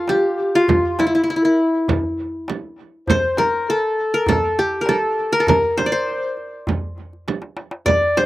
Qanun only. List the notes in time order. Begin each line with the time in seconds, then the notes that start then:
Already playing: F4 A4
0.09 G4
0.55 F4
0.99 E4
1.07 E4
1.15 E4
1.24 E4
1.30 E4
1.36 E4
1.45 E4
3.10 C5
3.38 A#4
3.70 A4
4.14 A#4
4.28 A4
4.59 G4
4.81 A#4
4.89 A4
5.33 A#4
5.40 A4
5.48 A#4
5.77 C5
5.86 D5
5.92 C5
7.86 D5
8.17 C5